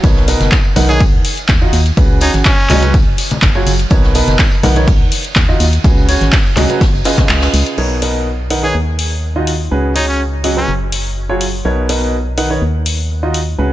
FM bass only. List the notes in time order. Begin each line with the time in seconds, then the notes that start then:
0.04 B1
0.41 F#1
0.76 B1
1.13 D#2
1.49 D#2
1.73 D#2
1.97 C#2
2.34 G#1
2.70 C#2
3.07 F#1
3.42 F#1
3.67 F#1
3.91 B1
4.28 F#1
4.63 B1
5.00 D#2
5.36 D#2
5.60 D#2
5.84 C#2
6.21 G#1
6.57 C#2
6.94 F#1
7.30 C#2
7.54 C#2
7.78 B1
8.75 D#2
9.71 C#2
10.68 F#1
11.65 B1
12.62 D#2
13.59 C#2